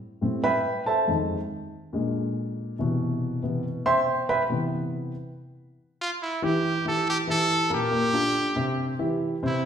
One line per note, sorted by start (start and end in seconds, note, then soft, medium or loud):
0.21 0.41 A2 medium
0.21 0.41 G3 soft
0.21 0.41 C4 medium
0.44 0.83 B4 medium
0.44 0.83 E5 medium
0.44 0.83 G5 medium
0.44 0.83 B5 loud
0.86 1.07 A4 medium
0.86 1.07 C5 medium
0.86 1.07 E5 medium
0.86 1.07 A5 medium
1.08 1.36 F2 medium
1.08 1.36 D#3 medium
1.08 1.37 G#3 medium
1.93 2.75 A#2 medium
1.93 2.75 D3 soft
1.93 2.75 G#3 medium
2.79 4.47 B2 medium
2.79 3.41 C3 medium
2.79 3.41 E3 medium
3.43 3.62 C3 medium
3.43 3.62 E3 soft
3.43 3.62 B3 medium
3.86 4.26 C5 medium
3.86 4.26 E5 medium
3.86 4.26 G5 medium
3.86 4.26 C6 loud
4.29 4.42 B4 medium
4.29 4.42 E5 medium
4.29 4.42 G5 medium
4.29 4.42 B5 loud
4.49 5.11 C3 medium
4.49 5.11 E3 medium
4.49 5.11 B3 medium
6.01 6.10 F4 medium
6.22 6.45 E4 medium
6.42 6.77 E3 medium
6.42 6.78 E4 medium
6.42 6.78 G4 medium
6.42 6.86 G4 medium
6.85 7.20 E3 medium
6.85 7.21 E4 medium
6.85 7.21 G4 medium
6.85 7.06 A4 loud
7.09 7.18 G4 loud
7.27 7.63 E3 medium
7.27 7.63 E4 medium
7.27 7.63 G4 medium
7.27 7.69 A4 loud
7.70 7.88 A#2 medium
7.70 7.88 A#3 medium
7.70 7.88 A#4 medium
7.74 8.97 G4 loud
7.91 8.09 A#2 medium
7.91 8.09 A#3 medium
7.91 8.10 A#4 medium
8.13 8.49 D3 medium
8.13 8.49 D4 medium
8.13 8.49 F4 medium
8.56 8.91 C3 medium
8.56 8.92 C4 medium
8.56 8.92 C5 medium
8.99 9.34 E3 medium
8.99 9.34 E4 medium
8.99 9.35 G4 medium
9.43 9.65 C3 medium
9.43 9.65 C4 medium
9.43 9.65 E4 medium
9.43 9.65 C5 medium